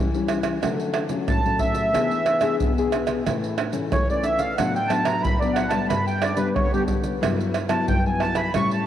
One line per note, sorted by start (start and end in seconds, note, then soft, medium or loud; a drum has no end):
0.00 0.59 E3 medium
0.14 0.58 G3 medium
0.14 0.58 C#4 medium
0.14 0.58 E4 medium
0.14 pandeiro soft
0.14 maracas soft
0.28 pandeiro medium
0.28 tamborim medium
0.28 maracas medium
0.43 pandeiro medium
0.43 tamborim medium
0.43 maracas medium
0.62 1.25 D3 medium
0.62 1.07 F#3 medium
0.62 1.07 A3 medium
0.62 1.07 C#4 medium
0.62 pandeiro medium
0.62 tamborim medium
0.62 maracas medium
0.62 surdo medium
0.80 pandeiro soft
0.80 maracas soft
0.94 pandeiro medium
0.94 tamborim medium
1.09 1.39 F#3 medium
1.09 1.39 A3 medium
1.09 1.39 C#4 medium
1.09 pandeiro medium
1.09 maracas medium
1.28 1.91 A2 medium
1.28 1.61 A5 medium
1.28 pandeiro medium
1.28 tamborim medium
1.28 maracas medium
1.28 surdo loud
1.45 1.89 F#3 medium
1.45 1.90 A3 medium
1.45 1.90 C#4 medium
1.45 pandeiro soft
1.45 maracas soft
1.59 2.56 E5 medium
1.59 pandeiro medium
1.59 surdo medium
1.75 pandeiro medium
1.75 maracas medium
1.93 2.57 E3 medium
1.93 2.25 B3 medium
1.93 2.25 D4 medium
1.93 2.25 G#4 medium
1.93 pandeiro medium
1.93 tamborim medium
1.93 maracas medium
1.93 surdo medium
2.11 pandeiro soft
2.11 maracas soft
2.26 pandeiro medium
2.26 tamborim medium
2.41 2.70 B3 medium
2.41 2.70 D4 medium
2.41 2.71 G#4 medium
2.41 pandeiro medium
2.41 tamborim medium
2.41 maracas medium
2.60 3.23 B2 medium
2.60 pandeiro medium
2.60 maracas medium
2.60 surdo medium
2.78 3.22 B3 medium
2.78 3.22 D4 medium
2.78 3.22 G#4 medium
2.78 pandeiro soft
2.78 maracas soft
2.92 pandeiro medium
2.92 tamborim medium
2.92 maracas medium
3.07 pandeiro medium
3.07 tamborim medium
3.07 maracas medium
3.25 3.89 A2 medium
3.25 3.57 E3 medium
3.25 3.57 A3 medium
3.25 3.57 C#4 medium
3.25 pandeiro medium
3.25 tamborim medium
3.25 maracas medium
3.25 surdo medium
3.44 pandeiro soft
3.44 maracas soft
3.58 pandeiro medium
3.58 tamborim medium
3.72 3.91 E3 medium
3.72 4.02 A3 medium
3.72 4.02 C#4 medium
3.72 pandeiro medium
3.72 maracas medium
3.92 4.09 E3 medium
3.92 4.08 C#5 medium
3.92 pandeiro medium
3.92 tamborim medium
3.92 maracas medium
3.92 surdo loud
4.10 4.54 E3 medium
4.10 4.54 A3 medium
4.10 4.54 C#4 medium
4.10 4.26 D5 medium
4.10 pandeiro soft
4.10 maracas soft
4.23 4.40 E5 medium
4.23 pandeiro medium
4.23 maracas medium
4.38 4.56 F5 medium
4.38 pandeiro medium
4.38 maracas medium
4.57 5.21 A2 medium
4.57 4.77 F#3 medium
4.57 4.78 B3 medium
4.57 4.78 D4 medium
4.57 4.74 F#5 medium
4.57 pandeiro medium
4.57 tamborim medium
4.57 maracas medium
4.57 surdo medium
4.76 4.91 G5 medium
4.76 pandeiro soft
4.76 maracas soft
4.88 5.34 F#3 soft
4.88 5.34 B3 medium
4.88 5.35 D4 medium
4.88 5.05 A5 loud
4.88 pandeiro medium
4.88 tamborim medium
4.88 maracas medium
5.04 5.22 A#5 loud
5.04 pandeiro medium
5.04 tamborim medium
5.04 maracas medium
5.22 5.87 A2 medium
5.22 5.39 B5 loud
5.22 pandeiro medium
5.22 maracas medium
5.22 surdo loud
5.40 5.69 F#3 medium
5.40 5.69 B3 medium
5.40 5.69 D4 medium
5.40 5.56 D5 medium
5.40 pandeiro soft
5.40 maracas soft
5.54 5.71 F#5 medium
5.54 pandeiro medium
5.54 tamborim medium
5.69 6.33 G3 medium
5.69 6.33 B3 medium
5.69 6.33 D4 medium
5.69 5.87 A5 loud
5.69 pandeiro medium
5.69 tamborim medium
5.69 maracas medium
5.89 6.52 G2 medium
5.89 6.06 B5 loud
5.89 pandeiro medium
5.89 tamborim medium
5.89 maracas medium
5.89 surdo medium
6.07 6.23 G5 medium
6.07 pandeiro soft
6.07 maracas soft
6.21 6.38 D5 medium
6.21 pandeiro medium
6.21 tamborim medium
6.36 6.66 G3 medium
6.36 6.66 B3 medium
6.36 6.66 D4 medium
6.36 6.54 B4 medium
6.36 pandeiro medium
6.36 maracas medium
6.55 7.18 D3 medium
6.55 6.72 C#5 medium
6.55 pandeiro medium
6.55 tamborim medium
6.55 maracas medium
6.55 surdo loud
6.73 7.17 G3 medium
6.73 7.17 B3 medium
6.73 7.17 D4 medium
6.73 6.83 G4 medium
6.73 pandeiro soft
6.73 maracas soft
6.88 pandeiro medium
6.88 maracas medium
6.88 surdo medium
7.04 pandeiro medium
7.04 maracas medium
7.21 7.84 G2 medium
7.21 7.53 F#3 medium
7.21 7.53 B3 medium
7.21 7.53 E4 medium
7.21 pandeiro medium
7.21 tamborim medium
7.21 maracas medium
7.21 surdo medium
7.41 pandeiro soft
7.41 maracas soft
7.54 pandeiro medium
7.54 tamborim medium
7.54 maracas medium
7.69 7.98 F#3 medium
7.69 7.98 B3 medium
7.69 7.98 E4 medium
7.69 7.86 A5 medium
7.69 pandeiro medium
7.69 tamborim medium
7.69 maracas medium
7.87 8.50 G2 medium
7.87 8.04 G5 medium
7.87 pandeiro medium
7.87 maracas medium
7.87 surdo loud
8.06 8.49 F#3 medium
8.06 8.49 B3 medium
8.06 8.50 E4 medium
8.06 8.22 G#5 medium
8.06 pandeiro soft
8.06 maracas soft
8.20 8.37 A5 loud
8.20 pandeiro medium
8.20 tamborim medium
8.35 8.53 B5 loud
8.35 pandeiro medium
8.35 tamborim medium
8.35 maracas medium
8.54 8.86 A2 medium
8.54 8.85 G3 medium
8.54 8.85 C#4 medium
8.54 8.86 E4 medium
8.54 8.71 C#6 loud
8.54 pandeiro medium
8.54 tamborim medium
8.54 maracas medium
8.54 surdo medium
8.71 8.86 A5 medium
8.71 pandeiro soft
8.71 maracas soft